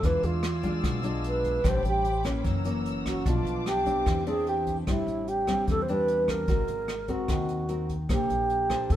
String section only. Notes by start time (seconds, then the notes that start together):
0.04 D5 F5 G#5 E6
1.65 C5 G5 B5 D6
2.44 C#5 F#5 A#5 E6
3.24 B4 F5 A5 D6
4.05 C5 E5 G5